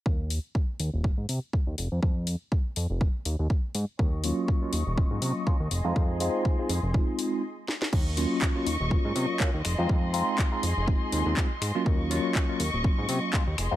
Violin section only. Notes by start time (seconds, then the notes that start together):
3.99 D#5 C#6
5.71 G#4 C6
7.93 D#5 C#6
9.65 G#4 C6
11.86 D#5 C#6
13.58 G#4 D#5 C6